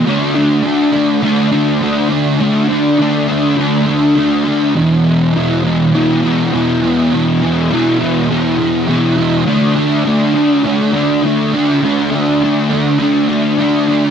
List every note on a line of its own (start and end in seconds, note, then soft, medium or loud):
0.06 0.63 D3 medium
0.06 0.38 A3 medium
0.06 0.35 D4 loud
0.35 0.65 A3 medium
0.35 0.66 D4 medium
0.63 1.21 D3 medium
0.63 0.95 A3 medium
0.63 0.92 D4 medium
0.92 1.22 A3 medium
0.92 1.24 D4 medium
1.22 1.80 D3 medium
1.22 1.53 A3 medium
1.22 1.50 D4 medium
1.51 1.82 A3 medium
1.51 1.83 D4 medium
1.81 2.38 D3 medium
1.81 2.12 A3 medium
1.81 2.08 D4 medium
2.10 2.40 A3 medium
2.10 2.41 D4 medium
2.40 2.97 D3 medium
2.40 2.71 A3 medium
2.40 2.67 D4 medium
2.68 2.99 A3 medium
2.68 3.00 D4 medium
2.98 3.55 D3 medium
2.98 3.30 A3 medium
2.98 3.26 D4 medium
3.28 3.57 A3 medium
3.28 3.59 D4 medium
3.57 4.14 D3 medium
3.57 3.88 A3 medium
3.57 3.85 D4 medium
3.86 4.16 A3 medium
3.86 4.18 D4 medium
4.15 4.73 D3 medium
4.15 4.46 A3 medium
4.15 4.43 D4 medium
4.44 4.75 A3 medium
4.44 4.73 D4 medium
4.74 5.33 E2 loud
4.74 5.06 B2 loud
4.74 5.04 E3 loud
5.04 5.34 B2 medium
5.04 5.36 E3 medium
5.33 5.92 E2 medium
5.33 5.65 B2 medium
5.33 5.63 E3 medium
5.64 5.93 B2 medium
5.64 5.95 E3 medium
5.93 6.51 E2 medium
5.93 6.25 B2 medium
5.93 6.22 E3 medium
6.23 6.53 B2 medium
6.23 6.55 E3 medium
6.52 7.11 E2 medium
6.52 6.84 B2 medium
6.52 6.80 E3 medium
6.82 7.13 B2 medium
6.82 7.14 E3 medium
7.12 7.69 E2 loud
7.12 7.44 B2 medium
7.12 7.40 E3 loud
7.41 7.71 B2 medium
7.41 7.72 E3 medium
7.70 8.28 E2 medium
7.70 8.01 B2 medium
7.70 7.98 E3 medium
7.99 8.30 B2 soft
7.99 8.31 E3 medium
8.29 8.86 E2 medium
8.29 8.60 B2 medium
8.29 8.57 E3 medium
8.58 8.88 B2 medium
8.58 8.89 E3 medium
8.87 9.45 E2 medium
8.87 9.19 B2 medium
8.87 9.16 E3 medium
9.17 9.46 B2 medium
9.17 9.45 E3 medium
9.46 10.05 D3 medium
9.46 9.78 A3 medium
9.46 9.75 D4 loud
9.76 10.06 A3 medium
9.76 10.08 D4 medium
10.05 10.62 D3 medium
10.05 10.37 A3 medium
10.05 10.33 D4 medium
10.34 10.63 A3 soft
10.34 10.65 D4 medium
10.63 11.21 D3 medium
10.63 10.95 A3 medium
10.63 10.91 D4 loud
10.92 11.23 A3 medium
10.92 11.25 D4 medium
11.23 11.80 D3 medium
11.23 11.55 A3 medium
11.23 11.52 D4 medium
11.53 11.82 A3 medium
11.53 11.84 D4 medium
11.81 12.39 D3 medium
11.81 12.13 A3 medium
11.81 12.10 D4 loud
12.11 12.41 A3 medium
12.11 12.42 D4 medium
12.40 12.97 D3 medium
12.40 12.72 A3 medium
12.40 12.68 D4 medium
12.69 13.00 A3 medium
12.69 13.01 D4 medium
12.99 13.56 D3 medium
12.99 13.30 A3 medium
12.99 13.27 D4 loud
13.28 13.58 A3 medium
13.28 13.60 D4 medium
13.57 14.11 D3 medium
13.57 13.90 A3 medium
13.57 13.86 D4 medium
13.88 14.11 A3 medium
13.88 14.11 D4 medium